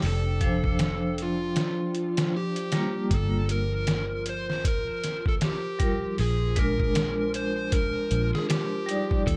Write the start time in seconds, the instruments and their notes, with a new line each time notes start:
Already playing: ambient pad F3 G5, synth drone D4
0.02 fingered electric bass F1, open hi-hat
0.07 electric slide guitar A4
0.41 vibraphone F3 D4 C5, kick, closed hi-hat
0.64 kick
0.79 snare, closed hi-hat
1.18 closed hi-hat
1.22 electric slide guitar F4
1.56 snare, closed hi-hat
1.95 closed hi-hat
2.17 snare, closed hi-hat
2.37 electric slide guitar G4
2.56 closed hi-hat
2.72 vibraphone G3 A#3 F4, snare, closed hi-hat
3.10 fingered electric bass G1, ambient pad F3 F4, electric slide guitar A4, kick, closed hi-hat
3.49 electric slide guitar A#4, closed hi-hat
3.87 snare, closed hi-hat
4.26 electric slide guitar C5, closed hi-hat
4.50 snare
4.65 electric slide guitar A#4, kick, closed hi-hat
5.04 snare, closed hi-hat
5.26 electric slide guitar A4, kick
5.41 electric slide guitar G4, snare, closed hi-hat
5.79 vibraphone G3 F4 A#4, kick, closed hi-hat
6.18 fingered electric bass A#1, electric slide guitar G#4, open hi-hat
6.56 vibraphone G#3 D4 A#4, electric slide guitar A#4, kick, closed hi-hat
6.80 kick
6.95 snare, closed hi-hat
7.34 electric slide guitar C5, closed hi-hat
7.72 electric slide guitar A#4, kick, closed hi-hat
8.11 fingered electric bass A#1, closed hi-hat
8.35 electric slide guitar G#4, snare
8.49 electric slide guitar G4, snare, closed hi-hat
8.86 vibraphone G3 D#4, closed hi-hat
8.90 vibraphone D5
9.11 kick
9.27 fingered electric bass D#2, electric slide guitar A4, kick, closed hi-hat